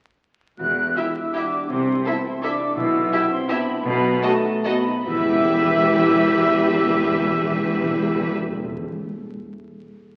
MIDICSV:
0, 0, Header, 1, 10, 480
1, 0, Start_track
1, 0, Key_signature, 1, "minor"
1, 0, Tempo, 360577
1, 796, Time_signature, 3, 2, 24, 8
1, 5627, Tempo, 416089
1, 9467, Tempo, 388098
1, 12688, End_track
2, 0, Start_track
2, 0, Title_t, "Flute section"
2, 0, Program_c, 0, 73
2, 780, Note_on_c, 0, 90, 69
2, 1244, Note_off_c, 0, 90, 0
2, 1266, Note_on_c, 0, 88, 55
2, 1781, Note_off_c, 0, 88, 0
2, 1781, Note_on_c, 0, 86, 61
2, 2255, Note_on_c, 0, 84, 60
2, 2258, Note_off_c, 0, 86, 0
2, 2723, Note_on_c, 0, 83, 56
2, 2727, Note_off_c, 0, 84, 0
2, 2803, Note_off_c, 0, 83, 0
2, 2975, Note_on_c, 0, 84, 62
2, 3219, Note_off_c, 0, 84, 0
2, 3222, Note_on_c, 0, 86, 70
2, 3683, Note_on_c, 0, 88, 83
2, 3685, Note_off_c, 0, 86, 0
2, 4389, Note_off_c, 0, 88, 0
2, 4409, Note_on_c, 0, 84, 72
2, 4654, Note_off_c, 0, 84, 0
2, 4661, Note_on_c, 0, 83, 79
2, 5120, Note_off_c, 0, 83, 0
2, 5136, Note_on_c, 0, 83, 92
2, 5622, Note_off_c, 0, 83, 0
2, 5636, Note_on_c, 0, 81, 83
2, 6118, Note_off_c, 0, 81, 0
2, 6126, Note_on_c, 0, 83, 89
2, 6603, Note_off_c, 0, 83, 0
2, 6615, Note_on_c, 0, 88, 85
2, 10416, Note_off_c, 0, 88, 0
2, 12688, End_track
3, 0, Start_track
3, 0, Title_t, "Violin section"
3, 0, Program_c, 1, 48
3, 1288, Note_on_c, 1, 76, 37
3, 1395, Note_off_c, 1, 76, 0
3, 1810, Note_on_c, 1, 76, 38
3, 1916, Note_off_c, 1, 76, 0
3, 2759, Note_on_c, 1, 76, 44
3, 2865, Note_off_c, 1, 76, 0
3, 3241, Note_on_c, 1, 76, 44
3, 3348, Note_off_c, 1, 76, 0
3, 4170, Note_on_c, 1, 76, 52
3, 4276, Note_off_c, 1, 76, 0
3, 4659, Note_on_c, 1, 76, 59
3, 4765, Note_off_c, 1, 76, 0
3, 5629, Note_on_c, 1, 75, 65
3, 5721, Note_off_c, 1, 75, 0
3, 6109, Note_on_c, 1, 75, 61
3, 6201, Note_off_c, 1, 75, 0
3, 6587, Note_on_c, 1, 76, 60
3, 10401, Note_off_c, 1, 76, 0
3, 12688, End_track
4, 0, Start_track
4, 0, Title_t, "Violin section"
4, 0, Program_c, 2, 48
4, 1277, Note_on_c, 2, 67, 35
4, 1384, Note_off_c, 2, 67, 0
4, 1783, Note_on_c, 2, 67, 41
4, 1889, Note_off_c, 2, 67, 0
4, 2738, Note_on_c, 2, 69, 45
4, 2845, Note_off_c, 2, 69, 0
4, 3225, Note_on_c, 2, 69, 47
4, 3332, Note_off_c, 2, 69, 0
4, 4159, Note_on_c, 2, 67, 51
4, 4266, Note_off_c, 2, 67, 0
4, 4645, Note_on_c, 2, 67, 58
4, 4751, Note_off_c, 2, 67, 0
4, 5624, Note_on_c, 2, 69, 62
4, 5716, Note_off_c, 2, 69, 0
4, 6122, Note_on_c, 2, 69, 63
4, 6214, Note_off_c, 2, 69, 0
4, 6605, Note_on_c, 2, 71, 68
4, 10411, Note_off_c, 2, 71, 0
4, 12688, End_track
5, 0, Start_track
5, 0, Title_t, "Viola section"
5, 0, Program_c, 3, 48
5, 1293, Note_on_c, 3, 64, 34
5, 1400, Note_off_c, 3, 64, 0
5, 1793, Note_on_c, 3, 64, 34
5, 1899, Note_off_c, 3, 64, 0
5, 2742, Note_on_c, 3, 64, 39
5, 2849, Note_off_c, 3, 64, 0
5, 3232, Note_on_c, 3, 64, 37
5, 3338, Note_off_c, 3, 64, 0
5, 4163, Note_on_c, 3, 64, 53
5, 4269, Note_off_c, 3, 64, 0
5, 4654, Note_on_c, 3, 64, 51
5, 4761, Note_off_c, 3, 64, 0
5, 5637, Note_on_c, 3, 66, 55
5, 5729, Note_off_c, 3, 66, 0
5, 6111, Note_on_c, 3, 66, 49
5, 6204, Note_off_c, 3, 66, 0
5, 6602, Note_on_c, 3, 67, 61
5, 10409, Note_off_c, 3, 67, 0
5, 12688, End_track
6, 0, Start_track
6, 0, Title_t, "Harp"
6, 0, Program_c, 4, 46
6, 787, Note_on_c, 4, 52, 46
6, 1030, Note_on_c, 4, 67, 31
6, 1284, Note_on_c, 4, 64, 36
6, 1523, Note_off_c, 4, 67, 0
6, 1539, Note_on_c, 4, 67, 33
6, 1789, Note_on_c, 4, 66, 32
6, 2010, Note_off_c, 4, 67, 0
6, 2026, Note_on_c, 4, 67, 38
6, 2193, Note_off_c, 4, 66, 0
6, 2257, Note_on_c, 4, 48, 46
6, 2277, Note_off_c, 4, 52, 0
6, 2278, Note_off_c, 4, 67, 0
6, 2475, Note_off_c, 4, 64, 0
6, 2491, Note_on_c, 4, 64, 34
6, 2734, Note_on_c, 4, 57, 40
6, 2960, Note_off_c, 4, 64, 0
6, 2976, Note_on_c, 4, 64, 37
6, 3223, Note_on_c, 4, 62, 34
6, 3438, Note_off_c, 4, 64, 0
6, 3454, Note_on_c, 4, 64, 42
6, 3619, Note_off_c, 4, 62, 0
6, 3682, Note_on_c, 4, 47, 55
6, 3704, Note_off_c, 4, 48, 0
6, 3704, Note_off_c, 4, 57, 0
6, 3891, Note_off_c, 4, 64, 0
6, 3907, Note_on_c, 4, 64, 43
6, 4164, Note_on_c, 4, 59, 48
6, 4390, Note_off_c, 4, 64, 0
6, 4406, Note_on_c, 4, 64, 47
6, 4658, Note_on_c, 4, 62, 45
6, 4872, Note_off_c, 4, 64, 0
6, 4888, Note_on_c, 4, 64, 50
6, 5062, Note_off_c, 4, 62, 0
6, 5115, Note_off_c, 4, 47, 0
6, 5131, Note_on_c, 4, 47, 70
6, 5145, Note_off_c, 4, 64, 0
6, 5368, Note_on_c, 4, 63, 58
6, 5627, Note_on_c, 4, 57, 60
6, 5861, Note_off_c, 4, 63, 0
6, 5875, Note_on_c, 4, 63, 61
6, 6123, Note_on_c, 4, 60, 46
6, 6360, Note_off_c, 4, 63, 0
6, 6373, Note_on_c, 4, 63, 53
6, 6534, Note_off_c, 4, 60, 0
6, 6603, Note_on_c, 4, 52, 54
6, 6614, Note_off_c, 4, 57, 0
6, 6616, Note_off_c, 4, 47, 0
6, 6620, Note_off_c, 4, 63, 0
6, 6672, Note_off_c, 4, 59, 0
6, 6686, Note_on_c, 4, 59, 55
6, 6763, Note_on_c, 4, 64, 54
6, 6842, Note_on_c, 4, 67, 58
6, 6925, Note_on_c, 4, 76, 56
6, 11220, Note_off_c, 4, 52, 0
6, 11292, Note_off_c, 4, 59, 0
6, 11361, Note_off_c, 4, 64, 0
6, 11404, Note_off_c, 4, 67, 0
6, 11449, Note_off_c, 4, 76, 0
6, 12688, End_track
7, 0, Start_track
7, 0, Title_t, "French horn section"
7, 0, Program_c, 5, 60
7, 785, Note_on_c, 5, 66, 54
7, 1246, Note_off_c, 5, 66, 0
7, 1277, Note_on_c, 5, 64, 51
7, 1774, Note_on_c, 5, 62, 57
7, 1786, Note_off_c, 5, 64, 0
7, 2240, Note_on_c, 5, 60, 58
7, 2254, Note_off_c, 5, 62, 0
7, 2716, Note_on_c, 5, 59, 52
7, 2720, Note_off_c, 5, 60, 0
7, 2956, Note_on_c, 5, 60, 53
7, 2976, Note_off_c, 5, 59, 0
7, 3209, Note_on_c, 5, 62, 60
7, 3215, Note_off_c, 5, 60, 0
7, 3666, Note_on_c, 5, 64, 74
7, 3679, Note_off_c, 5, 62, 0
7, 4380, Note_off_c, 5, 64, 0
7, 4397, Note_on_c, 5, 60, 69
7, 4649, Note_off_c, 5, 60, 0
7, 4655, Note_on_c, 5, 59, 64
7, 5131, Note_off_c, 5, 59, 0
7, 5144, Note_on_c, 5, 59, 90
7, 5626, Note_off_c, 5, 59, 0
7, 5629, Note_on_c, 5, 57, 80
7, 6105, Note_off_c, 5, 57, 0
7, 6136, Note_on_c, 5, 59, 67
7, 6599, Note_off_c, 5, 59, 0
7, 6603, Note_on_c, 5, 64, 80
7, 10410, Note_off_c, 5, 64, 0
7, 12688, End_track
8, 0, Start_track
8, 0, Title_t, "Cello section"
8, 0, Program_c, 6, 48
8, 793, Note_on_c, 6, 40, 44
8, 1200, Note_off_c, 6, 40, 0
8, 2255, Note_on_c, 6, 48, 51
8, 2654, Note_off_c, 6, 48, 0
8, 3685, Note_on_c, 6, 47, 57
8, 4073, Note_off_c, 6, 47, 0
8, 5125, Note_on_c, 6, 47, 81
8, 5537, Note_off_c, 6, 47, 0
8, 6597, Note_on_c, 6, 40, 66
8, 10407, Note_off_c, 6, 40, 0
8, 12688, End_track
9, 0, Start_track
9, 0, Title_t, "Timpani"
9, 0, Program_c, 7, 47
9, 793, Note_on_c, 7, 40, 52
9, 1489, Note_off_c, 7, 40, 0
9, 3684, Note_on_c, 7, 47, 67
9, 4354, Note_off_c, 7, 47, 0
9, 6592, Note_on_c, 7, 40, 70
9, 6666, Note_off_c, 7, 40, 0
9, 6668, Note_on_c, 7, 40, 68
9, 6739, Note_off_c, 7, 40, 0
9, 6739, Note_on_c, 7, 40, 86
9, 6807, Note_off_c, 7, 40, 0
9, 6807, Note_on_c, 7, 40, 68
9, 6880, Note_off_c, 7, 40, 0
9, 6880, Note_on_c, 7, 40, 81
9, 6953, Note_off_c, 7, 40, 0
9, 6953, Note_on_c, 7, 40, 69
9, 7024, Note_off_c, 7, 40, 0
9, 7024, Note_on_c, 7, 40, 77
9, 7096, Note_off_c, 7, 40, 0
9, 7096, Note_on_c, 7, 40, 67
9, 7169, Note_off_c, 7, 40, 0
9, 7172, Note_on_c, 7, 40, 81
9, 7245, Note_off_c, 7, 40, 0
9, 7249, Note_on_c, 7, 40, 70
9, 7322, Note_off_c, 7, 40, 0
9, 7322, Note_on_c, 7, 40, 68
9, 7395, Note_off_c, 7, 40, 0
9, 7399, Note_on_c, 7, 40, 66
9, 7472, Note_off_c, 7, 40, 0
9, 7475, Note_on_c, 7, 40, 73
9, 7548, Note_off_c, 7, 40, 0
9, 7548, Note_on_c, 7, 40, 63
9, 7620, Note_off_c, 7, 40, 0
9, 7620, Note_on_c, 7, 40, 72
9, 7693, Note_off_c, 7, 40, 0
9, 7696, Note_on_c, 7, 40, 67
9, 7769, Note_off_c, 7, 40, 0
9, 7771, Note_on_c, 7, 40, 78
9, 7840, Note_off_c, 7, 40, 0
9, 7840, Note_on_c, 7, 40, 75
9, 7914, Note_off_c, 7, 40, 0
9, 7921, Note_on_c, 7, 40, 71
9, 7994, Note_off_c, 7, 40, 0
9, 7997, Note_on_c, 7, 40, 74
9, 8067, Note_off_c, 7, 40, 0
9, 8067, Note_on_c, 7, 40, 72
9, 8140, Note_off_c, 7, 40, 0
9, 8146, Note_on_c, 7, 40, 70
9, 8216, Note_off_c, 7, 40, 0
9, 8216, Note_on_c, 7, 40, 72
9, 8287, Note_off_c, 7, 40, 0
9, 8287, Note_on_c, 7, 40, 72
9, 8360, Note_off_c, 7, 40, 0
9, 8360, Note_on_c, 7, 40, 75
9, 8431, Note_off_c, 7, 40, 0
9, 8431, Note_on_c, 7, 40, 76
9, 8504, Note_off_c, 7, 40, 0
9, 8504, Note_on_c, 7, 40, 72
9, 8577, Note_off_c, 7, 40, 0
9, 8581, Note_on_c, 7, 40, 66
9, 8654, Note_off_c, 7, 40, 0
9, 8667, Note_on_c, 7, 40, 73
9, 8740, Note_off_c, 7, 40, 0
9, 8740, Note_on_c, 7, 40, 75
9, 8811, Note_off_c, 7, 40, 0
9, 8811, Note_on_c, 7, 40, 70
9, 8883, Note_off_c, 7, 40, 0
9, 8883, Note_on_c, 7, 40, 66
9, 8952, Note_off_c, 7, 40, 0
9, 8952, Note_on_c, 7, 40, 78
9, 9025, Note_off_c, 7, 40, 0
9, 9032, Note_on_c, 7, 40, 66
9, 9101, Note_off_c, 7, 40, 0
9, 9101, Note_on_c, 7, 40, 69
9, 9174, Note_off_c, 7, 40, 0
9, 9177, Note_on_c, 7, 40, 66
9, 9249, Note_off_c, 7, 40, 0
9, 9249, Note_on_c, 7, 40, 72
9, 9322, Note_off_c, 7, 40, 0
9, 9327, Note_on_c, 7, 40, 71
9, 9401, Note_off_c, 7, 40, 0
9, 9403, Note_on_c, 7, 40, 81
9, 9476, Note_off_c, 7, 40, 0
9, 9477, Note_on_c, 7, 40, 65
9, 9553, Note_off_c, 7, 40, 0
9, 9553, Note_on_c, 7, 40, 73
9, 9631, Note_off_c, 7, 40, 0
9, 9631, Note_on_c, 7, 40, 67
9, 9710, Note_off_c, 7, 40, 0
9, 9715, Note_on_c, 7, 40, 72
9, 9793, Note_off_c, 7, 40, 0
9, 9797, Note_on_c, 7, 40, 76
9, 9875, Note_off_c, 7, 40, 0
9, 9876, Note_on_c, 7, 40, 68
9, 9951, Note_off_c, 7, 40, 0
9, 9951, Note_on_c, 7, 40, 76
9, 10029, Note_off_c, 7, 40, 0
9, 10030, Note_on_c, 7, 40, 80
9, 10105, Note_off_c, 7, 40, 0
9, 10105, Note_on_c, 7, 40, 77
9, 10183, Note_off_c, 7, 40, 0
9, 10183, Note_on_c, 7, 40, 77
9, 10262, Note_off_c, 7, 40, 0
9, 10263, Note_on_c, 7, 40, 67
9, 10340, Note_off_c, 7, 40, 0
9, 10340, Note_on_c, 7, 40, 72
9, 10419, Note_off_c, 7, 40, 0
9, 10420, Note_on_c, 7, 40, 68
9, 10498, Note_off_c, 7, 40, 0
9, 10498, Note_on_c, 7, 40, 74
9, 10575, Note_off_c, 7, 40, 0
9, 10575, Note_on_c, 7, 40, 68
9, 10653, Note_off_c, 7, 40, 0
9, 10659, Note_on_c, 7, 40, 72
9, 10736, Note_off_c, 7, 40, 0
9, 10736, Note_on_c, 7, 40, 67
9, 10809, Note_off_c, 7, 40, 0
9, 10809, Note_on_c, 7, 40, 75
9, 10887, Note_off_c, 7, 40, 0
9, 10888, Note_on_c, 7, 40, 67
9, 10963, Note_off_c, 7, 40, 0
9, 10963, Note_on_c, 7, 40, 68
9, 11039, Note_off_c, 7, 40, 0
9, 11039, Note_on_c, 7, 40, 69
9, 11117, Note_off_c, 7, 40, 0
9, 11121, Note_on_c, 7, 40, 75
9, 11200, Note_off_c, 7, 40, 0
9, 12688, End_track
10, 0, Start_track
10, 0, Title_t, "Double bass section"
10, 0, Program_c, 8, 48
10, 799, Note_on_c, 8, 28, 49
10, 1203, Note_off_c, 8, 28, 0
10, 2266, Note_on_c, 8, 36, 50
10, 2659, Note_off_c, 8, 36, 0
10, 3689, Note_on_c, 8, 35, 56
10, 4075, Note_off_c, 8, 35, 0
10, 5123, Note_on_c, 8, 35, 78
10, 5536, Note_off_c, 8, 35, 0
10, 6598, Note_on_c, 8, 28, 70
10, 10408, Note_off_c, 8, 28, 0
10, 12688, End_track
0, 0, End_of_file